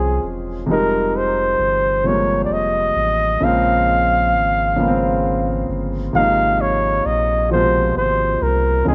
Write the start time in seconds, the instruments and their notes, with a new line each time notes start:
Already playing: sub bass C2, grand piano F3 G#3 C4 C#4 D#4 F4, flugelhorn G#4
0.23 sub bass E1
0.66 sub bass F1, grand piano C3 F3 G3
0.70 grand piano G#3 D#4, flugelhorn A#4
1.17 flugelhorn C5
1.59 sub bass G1
2.04 grand piano C3 F3 G3 G#3, flugelhorn C#5
2.09 grand piano A#3
2.44 flugelhorn D5
2.50 sub bass F1, flugelhorn D#5
2.96 sub bass A1
3.40 sub bass A#1, grand piano C#3 F3 G#3 A#3, flugelhorn F5
3.46 grand piano C4
4.33 sub bass G#1
4.76 grand piano C#3 F3 G#3 A#3
4.81 grand piano B3
4.88 grand piano C4
5.69 sub bass G1
6.13 sub bass G#1, grand piano C3 F3 G#3 A#3, flugelhorn F5
6.18 grand piano D#4
6.61 flugelhorn C#5
7.06 sub bass A#1, flugelhorn D#5
7.49 grand piano B2 F3 G#3, flugelhorn C5
7.53 grand piano C3 A#3 F4
7.96 sub bass G#1, flugelhorn C5
8.42 sub bass C2, flugelhorn A#4
8.85 sub bass C#2, grand piano C#3 F3 G#3 C4, flugelhorn G#4
8.90 grand piano D#4